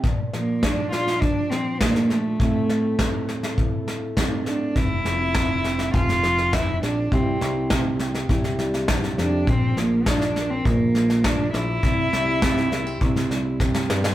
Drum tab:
SD |o-o-o-ooo-o-ooo-|o-o-o-ooo-o-o-o-|o-o-o-ooooooo-o-|o-o-o-ooooooooo-|
BD |o---o---o---o---|o---o---o---o---|o---o---o---o---|o---o---o---o---|

SD |o-o-ooo-o-ooo-o-|o-o-ooo-ooo-oooo|
BD |o---o---o---o---|o---o---o---o---|